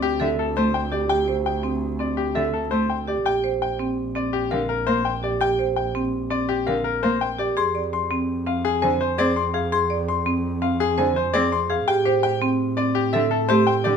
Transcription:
0.00 3.14 D2 medium
0.00 0.26 G4 medium
0.20 0.34 D3 medium
0.20 0.43 A4 medium
0.20 0.44 E5 medium
0.39 0.62 A4 medium
0.56 0.70 A3 medium
0.56 0.80 C5 medium
0.74 0.98 G5 medium
0.92 1.08 G4 medium
0.92 1.15 D5 medium
1.09 1.33 G4 medium
1.09 1.33 G5 medium
1.28 1.51 C5 soft
1.46 1.69 G5 medium
1.63 1.87 C4 medium
1.99 2.23 C4 medium
1.99 2.23 D5 soft
2.17 2.41 G4 medium
2.35 2.49 D3 medium
2.35 2.59 A4 medium
2.35 2.59 E5 medium
2.54 2.77 A4 medium
2.71 2.85 A3 medium
2.71 2.95 C5 medium
2.90 3.13 G5 soft
3.08 3.24 G4 medium
3.08 3.31 D5 soft
3.25 7.45 A#1 medium
3.25 3.49 G4 medium
3.25 3.49 G5 medium
3.44 3.67 C5 medium
3.62 3.85 G5 medium
3.79 4.03 C4 medium
4.15 4.39 C4 medium
4.15 4.39 D5 medium
4.33 4.57 G4 medium
4.51 4.65 D3 medium
4.51 4.75 A#4 medium
4.51 4.75 F5 medium
4.69 4.93 A#4 medium
4.87 5.01 A#3 medium
4.87 5.10 C5 medium
5.05 5.29 G5 soft
5.23 5.39 G4 medium
5.23 5.47 D5 medium
5.41 5.64 G4 medium
5.41 5.65 G5 medium
5.59 5.83 C5 medium
5.76 6.00 G5 medium
5.95 6.18 C4 medium
6.30 6.54 C4 medium
6.30 6.54 D5 medium
6.49 6.72 G4 medium
6.67 6.81 D3 medium
6.67 6.90 A#4 medium
6.67 6.90 F5 medium
6.84 7.08 A#4 medium
7.03 7.17 A#3 medium
7.03 7.26 C5 medium
7.21 7.44 G5 medium
7.39 7.62 G4 medium
7.39 7.62 D5 medium
7.57 11.77 F2 medium
7.57 7.80 G#4 medium
7.57 7.80 C6 medium
7.75 7.98 D5 medium
7.93 8.16 C6 medium
8.11 8.34 C4 medium
8.47 8.70 C4 medium
8.47 8.70 F5 medium
8.65 8.88 G#4 medium
8.82 8.96 D3 medium
8.82 9.06 C5 medium
8.82 9.06 G#5 medium
9.01 9.24 C5 medium
9.18 9.32 C4 medium
9.18 9.42 G#4 medium
9.18 9.42 D5 medium
9.36 9.60 C6 medium
9.54 9.71 G#4 medium
9.54 9.78 F5 medium
9.72 9.96 G#4 medium
9.72 9.96 C6 medium
9.90 10.14 D5 medium
10.08 10.32 C6 medium
10.26 10.50 C4 medium
10.62 10.86 C4 medium
10.62 10.85 F5 medium
10.80 11.04 G#4 medium
10.98 11.12 D3 medium
10.98 11.21 C5 medium
10.98 11.21 G#5 medium
11.16 11.40 C5 medium
11.34 11.47 C4 medium
11.34 11.57 G#4 medium
11.34 11.57 D5 medium
11.52 11.75 C6 medium
11.70 11.93 G#4 medium
11.70 11.93 F5 medium
11.88 13.97 A2 medium
11.88 12.11 G4 medium
11.88 12.11 G5 medium
12.05 12.29 G4 medium
12.05 12.29 C5 medium
12.23 12.47 G5 medium
12.42 12.65 C4 medium
12.77 13.01 C4 medium
12.77 13.01 D5 medium
12.95 13.19 G4 medium
13.13 13.27 D3 medium
13.13 13.37 A4 medium
13.13 13.37 E5 medium
13.31 13.55 A4 medium
13.49 13.63 A3 medium
13.49 13.73 G4 medium
13.49 13.73 C5 medium
13.67 13.91 G5 medium
13.84 13.97 D3 medium
13.84 13.97 G4 medium
13.84 13.97 D5 medium

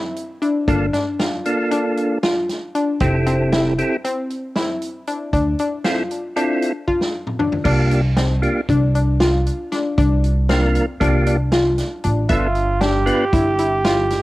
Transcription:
0.00 0.22 E4 medium
0.16 closed hi-hat soft
0.42 0.58 D4 medium
0.42 closed hi-hat soft
0.68 0.88 G1 medium
0.68 0.87 A#3 medium
0.68 0.84 D4 medium
0.68 0.86 D4 medium
0.68 0.86 F4 medium
0.68 0.86 A4 medium
0.68 kick medium
0.68 closed hi-hat medium
0.93 1.09 D4 medium
0.93 snare soft
0.93 closed hi-hat soft
1.19 1.52 F4 medium
1.19 snare medium
1.19 closed hi-hat medium
1.45 2.18 A#3 medium
1.45 2.18 D4 medium
1.45 2.18 F4 medium
1.45 2.18 A4 medium
1.45 closed hi-hat soft
1.71 2.03 D4 medium
1.71 closed hi-hat medium
1.97 closed hi-hat medium
2.23 2.55 F4 medium
2.23 snare medium
2.23 closed hi-hat medium
2.49 snare soft
2.49 closed hi-hat medium
2.75 2.91 D4 medium
2.75 closed hi-hat soft
3.00 3.80 F1 medium
3.00 3.17 C4 medium
3.00 3.73 C4 medium
3.00 3.73 E4 medium
3.00 3.73 G4 medium
3.00 3.74 A4 medium
3.00 kick loud
3.00 closed hi-hat medium
3.26 3.42 C4 medium
3.26 closed hi-hat medium
3.52 3.84 E4 medium
3.52 snare medium
3.52 closed hi-hat medium
3.78 3.97 C4 medium
3.78 3.97 E4 medium
3.78 3.97 G4 medium
3.78 3.97 A4 medium
3.78 closed hi-hat medium
4.04 4.36 C4 medium
4.04 closed hi-hat medium
4.30 closed hi-hat medium
4.56 4.88 E4 medium
4.56 snare medium
4.56 closed hi-hat medium
4.82 closed hi-hat soft
5.07 5.24 D4 medium
5.07 closed hi-hat soft
5.33 5.53 D2 medium
5.33 5.49 D4 medium
5.33 kick medium
5.33 closed hi-hat medium
5.59 5.76 D4 medium
5.59 closed hi-hat medium
5.84 6.03 C4 medium
5.84 6.03 E4 medium
5.84 6.03 F4 medium
5.84 6.17 F4 medium
5.84 6.03 A4 medium
5.84 snare medium
5.84 closed hi-hat medium
6.11 closed hi-hat medium
6.36 6.73 C4 medium
6.36 6.68 D4 medium
6.36 6.73 E4 medium
6.36 6.73 F4 medium
6.36 6.73 A4 medium
6.36 closed hi-hat medium
6.62 closed hi-hat medium
6.88 7.20 F4 medium
6.88 kick soft
7.01 snare soft
7.27 mid tom medium
7.39 7.56 D4 medium
7.39 floor tom medium
7.52 floor tom medium
7.64 8.44 C2 medium
7.64 8.01 A#3 medium
7.64 8.01 D4 medium
7.64 7.98 D4 medium
7.64 8.01 F4 medium
7.64 8.02 G4 medium
7.64 kick loud
7.64 crash medium
7.91 closed hi-hat medium
8.17 8.49 C4 medium
8.17 snare loud
8.17 closed hi-hat medium
8.42 8.61 A#3 medium
8.42 8.61 D4 medium
8.42 8.61 F4 medium
8.42 8.61 G4 medium
8.42 closed hi-hat medium
8.69 9.48 C2 medium
8.69 8.85 D4 medium
8.69 kick loud
8.69 closed hi-hat medium
8.95 9.11 D4 medium
8.95 closed hi-hat medium
9.20 9.52 F4 medium
9.20 snare medium
9.20 closed hi-hat medium
9.46 closed hi-hat soft
9.72 9.88 D4 medium
9.72 snare soft
9.72 closed hi-hat soft
9.98 10.77 C2 medium
9.98 10.30 D4 medium
9.98 kick loud
9.98 closed hi-hat medium
10.24 closed hi-hat medium
10.49 10.86 A#3 medium
10.49 10.81 C4 medium
10.49 10.86 D4 medium
10.49 10.86 F4 medium
10.49 10.86 A#4 medium
10.49 snare loud
10.49 closed hi-hat medium
10.75 closed hi-hat medium
11.00 11.80 C2 medium
11.00 11.37 A#3 medium
11.00 11.37 D4 medium
11.00 11.17 D4 medium
11.00 11.37 F4 medium
11.00 11.37 G4 medium
11.00 kick loud
11.00 closed hi-hat medium
11.26 11.43 D4 medium
11.26 closed hi-hat medium
11.52 11.84 F4 medium
11.52 snare medium
11.52 closed hi-hat medium
11.78 snare soft
11.78 closed hi-hat medium
12.04 12.24 A1 medium
12.04 12.20 D4 medium
12.04 closed hi-hat medium
12.29 13.08 G1 medium
12.29 12.48 B3 medium
12.29 12.48 D4 medium
12.29 12.48 F4 medium
12.29 12.82 F4 loud
12.29 12.48 A4 medium
12.29 12.61 E5 medium
12.29 kick loud
12.29 closed hi-hat medium
12.55 closed hi-hat medium
12.81 13.13 D4 medium
12.81 14.22 G4 loud
12.81 snare loud
12.81 closed hi-hat medium
13.06 13.25 B3 medium
13.06 13.25 D4 medium
13.06 13.25 F4 medium
13.06 13.25 B4 medium
13.06 closed hi-hat medium
13.33 14.12 G1 medium
13.33 13.49 E4 medium
13.33 kick medium
13.33 closed hi-hat medium
13.58 13.75 E4 medium
13.58 closed hi-hat medium
13.84 14.16 F4 medium
13.84 snare medium
13.84 closed hi-hat medium
14.10 snare soft
14.10 closed hi-hat medium

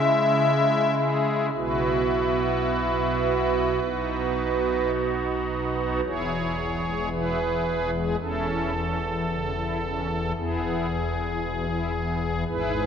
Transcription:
0.00 1.50 C#3 medium
0.00 1.50 G#3 medium
0.00 1.51 E4 medium
0.00 0.94 E5 loud
0.98 1.46 G#4 medium
1.55 3.79 B1 soft
1.55 3.79 B2 soft
1.55 3.79 B3 soft
1.55 3.79 E4 soft
1.55 3.79 F#4 soft
1.55 4.91 B4 medium
3.83 6.01 B1 soft
3.83 6.01 B2 soft
3.83 6.01 B3 soft
3.83 6.01 D#4 soft
3.83 6.00 F#4 soft
6.05 8.15 E1 medium
6.05 8.15 E2 medium
6.05 6.29 E4 medium
6.05 7.09 G#4 medium
6.05 7.09 C#5 loud
6.31 6.55 E4 medium
6.59 6.82 B3 medium
6.85 7.09 G#3 soft
7.12 7.36 B2 medium
7.12 7.38 E4 medium
7.12 7.91 G#4 medium
7.12 7.90 B4 medium
7.40 7.63 E4 medium
7.66 7.90 B3 soft
7.94 8.16 G#3 soft
7.94 8.16 G#4 medium
8.20 10.32 E1 medium
8.20 10.32 E2 medium
8.20 8.72 C#4 medium
8.20 8.46 E4 medium
8.20 10.32 A4 medium
8.48 8.71 E4 medium
8.74 8.98 C#4 medium
9.02 9.25 E3 medium
9.28 9.52 C#3 medium
9.55 9.79 E4 medium
9.83 10.07 C#4 medium
10.11 10.33 E3 medium
10.37 12.44 E1 medium
10.37 12.44 E2 medium
10.37 10.88 B3 medium
10.37 10.61 E4 medium
10.37 12.44 G#4 medium
10.63 10.86 E4 medium
10.90 11.13 B3 medium
11.15 11.39 E3 medium
11.41 11.65 B2 medium
11.68 11.92 E4 medium
11.96 12.19 B3 medium
12.22 12.44 E3 medium
12.46 12.86 G#1 medium
12.46 12.86 G#2 medium
12.46 12.72 E4 medium
12.46 12.86 G#4 medium
12.46 12.86 B4 loud
12.74 12.86 E4 medium

